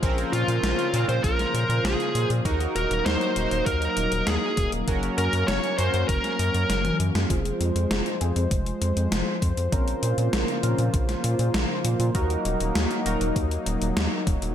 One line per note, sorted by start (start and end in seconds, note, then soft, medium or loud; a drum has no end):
0.00 0.24 A#1 loud
0.00 2.43 C#3 medium
0.00 2.41 F3 medium
0.00 7.26 A#3 medium
0.00 0.90 C4 medium
0.00 0.90 C#4 medium
0.00 2.43 F4 medium
0.00 0.90 A#4 medium
0.00 2.43 C5 medium
0.00 kick loud
0.00 closed hi-hat medium
0.18 closed hi-hat soft
0.33 0.44 A#2 loud
0.33 1.05 F4 medium
0.33 closed hi-hat medium
0.48 0.59 A#2 medium
0.48 closed hi-hat soft
0.63 0.74 A#1 medium
0.63 snare loud
0.63 closed hi-hat medium
0.79 closed hi-hat soft
0.94 1.05 A#2 medium
0.94 1.16 C4 medium
0.94 1.16 C#4 medium
0.94 1.16 A#4 medium
0.94 closed hi-hat medium
1.09 1.20 A#2 loud
1.09 1.23 C5 loud
1.09 closed hi-hat soft
1.24 1.46 A#1 medium
1.24 1.86 A#4 loud
1.24 kick loud
1.24 closed hi-hat medium
1.39 snare soft
1.39 closed hi-hat soft
1.54 1.65 A#2 medium
1.54 closed hi-hat medium
1.69 1.80 A#2 medium
1.69 closed hi-hat soft
1.84 1.95 A#1 loud
1.84 2.27 G#4 medium
1.84 snare loud
1.84 closed hi-hat medium
2.00 closed hi-hat soft
2.15 2.26 A#2 medium
2.15 closed hi-hat medium
2.30 2.41 A#2 medium
2.30 closed hi-hat soft
2.45 2.67 D#2 loud
2.45 4.85 F#3 medium
2.45 3.33 D#4 medium
2.45 4.85 D#4 medium
2.45 3.32 F#4 medium
2.45 3.33 A#4 medium
2.45 kick loud
2.45 closed hi-hat medium
2.60 closed hi-hat soft
2.76 2.86 D#1 loud
2.76 3.06 A#4 medium
2.76 closed hi-hat medium
2.91 3.02 D#1 loud
2.91 closed hi-hat medium
3.06 3.17 D#2 medium
3.06 3.66 C5 loud
3.06 snare loud
3.06 closed hi-hat medium
3.21 closed hi-hat soft
3.36 3.47 D#1 medium
3.36 3.58 D#4 medium
3.36 3.58 F#4 medium
3.36 3.58 A#4 medium
3.36 closed hi-hat medium
3.51 3.62 D#1 medium
3.51 closed hi-hat soft
3.66 3.88 D#2 medium
3.66 4.29 A#4 loud
3.66 kick loud
3.66 closed hi-hat medium
3.82 closed hi-hat soft
3.97 4.08 D#1 medium
3.97 closed hi-hat medium
4.12 4.23 D#1 medium
4.12 closed hi-hat medium
4.27 4.38 D#2 loud
4.27 4.69 G#4 medium
4.27 snare loud
4.27 closed hi-hat medium
4.57 4.68 D#1 medium
4.57 kick loud
4.57 closed hi-hat medium
4.72 4.83 D#1 medium
4.72 closed hi-hat medium
4.88 5.09 F#1 loud
4.88 7.28 F#3 medium
4.88 5.75 C#4 medium
4.88 7.28 C#4 medium
4.88 5.75 F#4 medium
4.88 5.75 A#4 medium
4.88 kick loud
4.88 closed hi-hat medium
5.03 closed hi-hat soft
5.18 5.29 F#2 loud
5.18 5.46 A#4 medium
5.18 closed hi-hat medium
5.33 5.44 F#2 medium
5.33 closed hi-hat medium
5.48 5.59 F#1 loud
5.48 5.77 C#5 loud
5.48 snare loud
5.48 closed hi-hat medium
5.64 closed hi-hat soft
5.78 5.89 F#2 medium
5.78 6.01 C#4 medium
5.78 6.01 F#4 medium
5.78 6.01 A#4 medium
5.78 6.08 C5 loud
5.78 closed hi-hat medium
5.94 6.05 F#2 loud
5.94 closed hi-hat medium
6.08 6.20 F#1 medium
6.08 6.95 A#4 medium
6.08 kick loud
6.08 closed hi-hat medium
6.24 snare soft
6.24 closed hi-hat soft
6.39 6.50 F#2 loud
6.39 closed hi-hat medium
6.54 6.65 F#2 medium
6.54 closed hi-hat medium
6.69 6.91 F#1 medium
6.69 snare medium
6.69 closed hi-hat medium
6.85 closed hi-hat soft
6.85 high tom medium
7.00 7.11 F#2 medium
7.00 closed hi-hat medium
7.15 7.26 F#2 medium
7.15 snare medium
7.15 closed hi-hat medium
7.30 7.52 F1 loud
7.30 12.11 F3 medium
7.30 9.70 G#3 medium
7.30 8.17 C4 medium
7.30 8.17 F4 medium
7.30 8.18 G#4 medium
7.30 12.11 C5 medium
7.30 kick loud
7.30 closed hi-hat medium
7.45 closed hi-hat soft
7.60 7.71 F2 loud
7.60 closed hi-hat medium
7.76 7.86 F2 medium
7.76 closed hi-hat medium
7.91 8.02 F1 medium
7.91 snare loud
7.91 closed hi-hat medium
8.06 closed hi-hat soft
8.21 8.32 F2 medium
8.21 8.43 C4 medium
8.21 8.43 F4 medium
8.21 8.43 G#4 medium
8.21 closed hi-hat medium
8.36 8.47 F2 medium
8.36 closed hi-hat medium
8.51 8.73 F1 medium
8.51 kick loud
8.51 closed hi-hat medium
8.66 closed hi-hat soft
8.82 8.92 F2 medium
8.82 closed hi-hat medium
8.97 9.08 F2 medium
8.97 closed hi-hat medium
9.12 9.23 F1 medium
9.12 snare loud
9.12 closed hi-hat medium
9.42 9.53 F2 medium
9.42 kick loud
9.42 closed hi-hat medium
9.57 9.68 F2 medium
9.57 closed hi-hat medium
9.72 9.94 A#1 loud
9.72 12.13 C#3 medium
9.72 14.53 A#3 medium
9.72 10.60 C4 medium
9.72 10.60 C#4 medium
9.72 12.13 F4 medium
9.72 10.60 A#4 medium
9.72 kick loud
9.72 closed hi-hat medium
9.88 closed hi-hat soft
10.03 10.14 A#2 loud
10.03 closed hi-hat medium
10.18 10.29 A#2 loud
10.18 closed hi-hat medium
10.33 10.44 A#1 medium
10.33 snare loud
10.33 closed hi-hat medium
10.48 closed hi-hat soft
10.63 10.74 A#2 medium
10.63 10.85 C4 medium
10.63 10.85 C#4 medium
10.63 10.85 A#4 medium
10.63 closed hi-hat medium
10.79 10.89 A#2 medium
10.79 closed hi-hat medium
10.94 11.15 A#1 medium
10.94 kick loud
10.94 closed hi-hat medium
11.09 snare soft
11.09 closed hi-hat soft
11.24 11.35 A#2 medium
11.24 closed hi-hat medium
11.39 11.50 A#2 medium
11.39 closed hi-hat medium
11.54 11.65 A#1 loud
11.54 snare loud
11.54 closed hi-hat medium
11.85 11.95 A#2 medium
11.85 closed hi-hat medium
12.00 12.11 A#2 medium
12.00 closed hi-hat medium
12.15 12.37 D#2 loud
12.15 14.55 F#3 medium
12.15 13.02 D#4 medium
12.15 14.55 D#4 medium
12.15 13.02 F#4 medium
12.15 13.02 A#4 medium
12.15 kick loud
12.15 closed hi-hat medium
12.30 closed hi-hat soft
12.45 12.56 D#1 loud
12.45 closed hi-hat medium
12.60 12.71 D#1 medium
12.60 closed hi-hat medium
12.75 12.86 D#2 medium
12.75 snare loud
12.75 closed hi-hat medium
12.91 closed hi-hat soft
13.06 13.17 D#1 medium
13.06 13.28 D#4 medium
13.06 13.28 F#4 medium
13.06 13.28 A#4 medium
13.06 closed hi-hat medium
13.21 13.32 D#1 loud
13.21 closed hi-hat medium
13.36 13.58 D#2 medium
13.36 kick loud
13.36 closed hi-hat medium
13.51 closed hi-hat soft
13.66 13.77 D#1 medium
13.66 closed hi-hat medium
13.81 13.92 D#1 medium
13.81 closed hi-hat medium
13.97 14.08 D#2 loud
13.97 snare loud
13.97 closed hi-hat medium
14.27 14.38 D#1 medium
14.27 kick loud
14.27 closed hi-hat medium
14.42 14.53 D#1 medium
14.42 closed hi-hat medium